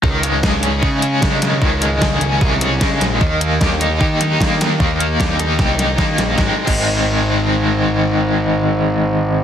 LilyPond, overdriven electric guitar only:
\new Staff \with { instrumentName = "Overdriven electric guitar" } { \time 4/4 \key aes \major \tempo 4 = 152 ees8 aes8 aes'8 des'8 aes'8 des'8 aes8 ees8 | ees8 aes8 aes'8 des'8 aes'8 des'8 aes8 ees8 | ees8 bes8 g'8 ees'8 g'8 ees'8 bes8 ees8 | ees8 bes8 g'8 ees'8 g'8 ees'8 bes8 ees8 |
<ees aes c'>16 r8 <ees aes c'>2.~ <ees aes c'>16~ | <ees aes c'>1 | }